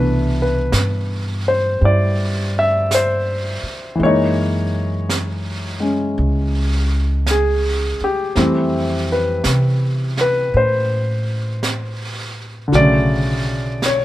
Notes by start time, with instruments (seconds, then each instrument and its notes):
Already playing: upright bass C2, grand piano B2 E3 A3 D4 B4
0.42 grand piano B4
0.72 upright bass G2, brush sweep, snare, hi-hat pedal
1.48 grand piano C5
1.81 upright bass G2, grand piano G3 E4, brush sweep
1.85 grand piano D5
2.59 grand piano E5
2.91 grand piano C5, brush sweep, snare, hi-hat pedal
3.63 muted upright bass stroke
3.95 grand piano E3 G#3
4.00 upright bass F#2, grand piano A#3 C#5, brush sweep
4.06 grand piano D#4
5.09 brush sweep, snare, hi-hat pedal
5.80 grand piano G#3 C#4
6.18 upright bass C#2, brush sweep
7.26 brush sweep, snare, hi-hat pedal
7.31 grand piano G#4
8.01 grand piano G4, muted upright bass stroke
8.36 upright bass F2, grand piano E3 G3 A3 C4, brush sweep, snare
9.12 grand piano B4
9.44 upright bass C3, brush sweep, snare, hi-hat pedal
10.17 grand piano B4, snare
10.54 upright bass A2, grand piano C5, brush sweep
11.63 brush sweep, snare, hi-hat pedal
12.68 grand piano D3
12.72 upright bass B1, grand piano F#3 A3 D5, brush sweep, snare
12.78 grand piano C#3
13.82 grand piano C#5, brush sweep, snare, hi-hat pedal